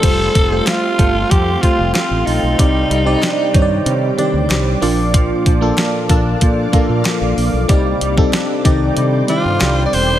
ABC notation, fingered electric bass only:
X:1
M:4/4
L:1/16
Q:1/4=94
K:Cdor
V:1 name="Fingered electric bass" clef=bass
F,,,2 F,,,2 z2 G,,,2 F,,2 z F,,, z A,,, B,,, =B,,, | C,,2 C,,2 z2 G,,2 C,2 z D,, C,,2 B,,,2- | B,,,2 B,,,2 z2 B,,,2 B,,2 z B,, z B,,, B,,, =B,,, | C,,2 C,,2 z2 C,,2 C,2 z G,, C,,2 =E,,,2 |]